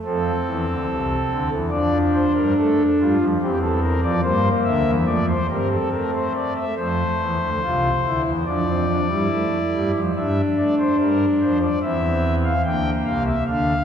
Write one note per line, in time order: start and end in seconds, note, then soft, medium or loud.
0.05 0.31 F2 medium
0.05 0.32 F3 medium
0.05 1.50 C4 medium
0.05 1.50 A4 medium
0.47 0.65 E2 medium
0.47 0.65 E3 medium
0.68 0.87 D2 medium
0.68 0.86 D3 medium
0.88 1.14 C2 medium
0.88 1.15 C3 medium
1.30 1.49 D2 medium
1.30 1.49 D3 medium
1.51 1.70 E2 medium
1.51 1.70 E3 medium
1.71 2.26 F2 medium
1.71 2.26 F3 medium
1.71 3.15 D4 medium
1.71 1.98 D5 medium
2.14 2.33 C5 medium
2.35 2.54 G2 medium
2.35 2.54 G3 medium
2.35 2.53 A#4 medium
2.57 2.83 A3 medium
2.57 2.83 A4 medium
3.00 3.17 G2 medium
3.00 3.17 G3 medium
3.00 3.25 F4 medium
3.20 3.38 F2 medium
3.20 3.38 F3 medium
3.41 3.95 E2 medium
3.41 3.95 E3 medium
3.41 4.13 C4 medium
3.41 3.59 G4 medium
3.62 3.80 A4 medium
3.83 4.00 A#4 medium
4.03 4.21 F2 medium
4.03 4.21 F3 medium
4.03 4.21 D5 medium
4.23 4.49 G2 loud
4.23 4.49 G3 loud
4.23 4.96 A#3 medium
4.23 4.49 C5 medium
4.65 4.83 D2 medium
4.65 4.83 D3 medium
4.65 4.91 E5 medium
4.86 5.04 E2 loud
4.86 5.04 E3 medium
5.07 5.33 F2 loud
5.07 5.33 F3 medium
5.07 5.33 A3 medium
5.07 5.25 D5 medium
5.28 5.47 C5 medium
5.49 5.76 G2 medium
5.49 5.76 G3 medium
5.49 6.59 C4 medium
5.49 5.68 A#4 medium
5.71 5.89 A4 medium
5.92 6.65 A3 medium
5.92 6.11 A#4 medium
6.15 6.33 C5 medium
6.35 6.53 D5 medium
6.56 6.74 E5 medium
6.77 7.03 F2 medium
6.77 7.03 F3 medium
6.77 7.50 A3 medium
6.77 8.22 C5 medium
7.20 7.38 E2 medium
7.20 7.38 E3 medium
7.42 7.59 D2 medium
7.42 7.60 D3 medium
7.64 7.89 C2 medium
7.64 7.89 C3 medium
7.64 7.89 F4 medium
8.05 8.23 D2 medium
8.05 8.23 D3 medium
8.05 8.31 E4 medium
8.26 8.44 E2 medium
8.26 8.44 E3 medium
8.47 9.00 F2 medium
8.47 9.00 F3 medium
8.47 8.64 D4 medium
8.47 9.91 D5 medium
8.68 8.86 C4 medium
8.89 9.07 D4 medium
9.10 9.28 G2 medium
9.10 9.27 G3 medium
9.10 10.00 E4 medium
9.32 9.58 A3 medium
9.74 9.91 G2 medium
9.74 9.91 G3 medium
9.95 10.12 F2 medium
9.95 10.12 F3 medium
10.16 10.41 G2 medium
10.16 10.41 G3 medium
10.16 11.59 D4 medium
10.16 10.41 E5 medium
10.57 10.83 A3 medium
10.57 10.75 D5 medium
10.80 10.96 C5 medium
11.00 11.25 G2 medium
11.00 11.26 G3 medium
11.00 11.25 A#4 medium
11.41 11.67 F2 medium
11.41 11.66 F3 medium
11.41 11.59 C5 medium
11.62 11.79 D5 medium
11.82 12.53 E2 medium
11.82 12.53 E3 medium
11.82 12.53 C4 medium
11.82 12.35 E5 medium
12.45 12.62 F5 medium
12.65 12.90 D2 medium
12.65 12.90 D3 medium
12.65 13.36 A#3 medium
12.65 12.90 G5 medium
13.05 13.31 C2 medium
13.05 13.31 C3 medium
13.05 13.23 F5 medium
13.26 13.44 E5 medium
13.47 13.73 D2 medium
13.47 13.73 D3 medium
13.47 13.73 D4 medium
13.47 13.84 F5 medium